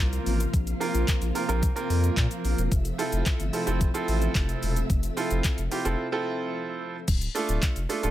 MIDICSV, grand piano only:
0, 0, Header, 1, 2, 480
1, 0, Start_track
1, 0, Tempo, 545455
1, 471, Time_signature, 4, 2, 24, 8
1, 7133, End_track
2, 0, Start_track
2, 0, Title_t, "Grand piano"
2, 0, Program_c, 0, 0
2, 0, Note_on_c, 0, 58, 99
2, 0, Note_on_c, 0, 60, 88
2, 0, Note_on_c, 0, 65, 93
2, 0, Note_on_c, 0, 70, 111
2, 352, Note_off_c, 0, 58, 0
2, 352, Note_off_c, 0, 60, 0
2, 353, Note_off_c, 0, 65, 0
2, 354, Note_off_c, 0, 70, 0
2, 707, Note_on_c, 0, 58, 91
2, 707, Note_on_c, 0, 60, 80
2, 709, Note_on_c, 0, 65, 87
2, 710, Note_on_c, 0, 70, 103
2, 1070, Note_off_c, 0, 58, 0
2, 1070, Note_off_c, 0, 60, 0
2, 1072, Note_off_c, 0, 65, 0
2, 1072, Note_off_c, 0, 70, 0
2, 1187, Note_on_c, 0, 58, 82
2, 1188, Note_on_c, 0, 60, 75
2, 1189, Note_on_c, 0, 65, 78
2, 1191, Note_on_c, 0, 70, 96
2, 1279, Note_off_c, 0, 58, 0
2, 1280, Note_off_c, 0, 60, 0
2, 1280, Note_off_c, 0, 65, 0
2, 1281, Note_off_c, 0, 70, 0
2, 1306, Note_on_c, 0, 58, 89
2, 1307, Note_on_c, 0, 60, 80
2, 1308, Note_on_c, 0, 65, 83
2, 1309, Note_on_c, 0, 70, 98
2, 1489, Note_off_c, 0, 58, 0
2, 1489, Note_off_c, 0, 60, 0
2, 1490, Note_off_c, 0, 65, 0
2, 1491, Note_off_c, 0, 70, 0
2, 1545, Note_on_c, 0, 58, 96
2, 1546, Note_on_c, 0, 60, 94
2, 1548, Note_on_c, 0, 65, 90
2, 1549, Note_on_c, 0, 70, 111
2, 2271, Note_off_c, 0, 58, 0
2, 2272, Note_off_c, 0, 60, 0
2, 2272, Note_off_c, 0, 65, 0
2, 2273, Note_off_c, 0, 70, 0
2, 2626, Note_on_c, 0, 60, 93
2, 2627, Note_on_c, 0, 64, 84
2, 2629, Note_on_c, 0, 65, 81
2, 2630, Note_on_c, 0, 69, 104
2, 2990, Note_off_c, 0, 60, 0
2, 2990, Note_off_c, 0, 64, 0
2, 2991, Note_off_c, 0, 65, 0
2, 2992, Note_off_c, 0, 69, 0
2, 3107, Note_on_c, 0, 60, 82
2, 3109, Note_on_c, 0, 64, 79
2, 3111, Note_on_c, 0, 65, 77
2, 3112, Note_on_c, 0, 69, 92
2, 3200, Note_off_c, 0, 60, 0
2, 3200, Note_off_c, 0, 64, 0
2, 3201, Note_off_c, 0, 65, 0
2, 3202, Note_off_c, 0, 69, 0
2, 3228, Note_on_c, 0, 60, 93
2, 3229, Note_on_c, 0, 64, 83
2, 3231, Note_on_c, 0, 65, 79
2, 3232, Note_on_c, 0, 69, 99
2, 3410, Note_off_c, 0, 60, 0
2, 3410, Note_off_c, 0, 64, 0
2, 3411, Note_off_c, 0, 65, 0
2, 3412, Note_off_c, 0, 69, 0
2, 3468, Note_on_c, 0, 60, 96
2, 3469, Note_on_c, 0, 64, 93
2, 3470, Note_on_c, 0, 65, 90
2, 3471, Note_on_c, 0, 69, 116
2, 4192, Note_off_c, 0, 60, 0
2, 4193, Note_off_c, 0, 64, 0
2, 4193, Note_off_c, 0, 65, 0
2, 4194, Note_off_c, 0, 69, 0
2, 4547, Note_on_c, 0, 60, 87
2, 4548, Note_on_c, 0, 64, 81
2, 4550, Note_on_c, 0, 65, 88
2, 4551, Note_on_c, 0, 69, 97
2, 4910, Note_off_c, 0, 60, 0
2, 4911, Note_off_c, 0, 64, 0
2, 4912, Note_off_c, 0, 65, 0
2, 4913, Note_off_c, 0, 69, 0
2, 5028, Note_on_c, 0, 60, 84
2, 5030, Note_on_c, 0, 64, 80
2, 5031, Note_on_c, 0, 65, 78
2, 5033, Note_on_c, 0, 67, 95
2, 5120, Note_off_c, 0, 60, 0
2, 5121, Note_off_c, 0, 64, 0
2, 5121, Note_off_c, 0, 65, 0
2, 5122, Note_off_c, 0, 67, 0
2, 5147, Note_on_c, 0, 60, 91
2, 5149, Note_on_c, 0, 64, 81
2, 5151, Note_on_c, 0, 65, 84
2, 5152, Note_on_c, 0, 69, 98
2, 5330, Note_off_c, 0, 60, 0
2, 5331, Note_off_c, 0, 64, 0
2, 5331, Note_off_c, 0, 65, 0
2, 5332, Note_off_c, 0, 69, 0
2, 5387, Note_on_c, 0, 60, 100
2, 5389, Note_on_c, 0, 64, 90
2, 5390, Note_on_c, 0, 65, 88
2, 5391, Note_on_c, 0, 69, 115
2, 6112, Note_off_c, 0, 60, 0
2, 6113, Note_off_c, 0, 64, 0
2, 6114, Note_off_c, 0, 65, 0
2, 6114, Note_off_c, 0, 69, 0
2, 6465, Note_on_c, 0, 57, 94
2, 6467, Note_on_c, 0, 62, 82
2, 6468, Note_on_c, 0, 65, 85
2, 6470, Note_on_c, 0, 69, 103
2, 6829, Note_off_c, 0, 57, 0
2, 6831, Note_off_c, 0, 62, 0
2, 6831, Note_off_c, 0, 65, 0
2, 6832, Note_off_c, 0, 69, 0
2, 6945, Note_on_c, 0, 57, 88
2, 6946, Note_on_c, 0, 62, 79
2, 6947, Note_on_c, 0, 65, 77
2, 6949, Note_on_c, 0, 69, 94
2, 7038, Note_off_c, 0, 57, 0
2, 7039, Note_off_c, 0, 62, 0
2, 7039, Note_off_c, 0, 65, 0
2, 7040, Note_off_c, 0, 69, 0
2, 7064, Note_on_c, 0, 57, 84
2, 7067, Note_on_c, 0, 62, 81
2, 7068, Note_on_c, 0, 65, 82
2, 7070, Note_on_c, 0, 69, 96
2, 7133, Note_off_c, 0, 57, 0
2, 7133, Note_off_c, 0, 62, 0
2, 7133, Note_off_c, 0, 65, 0
2, 7133, Note_off_c, 0, 69, 0
2, 7133, End_track
0, 0, End_of_file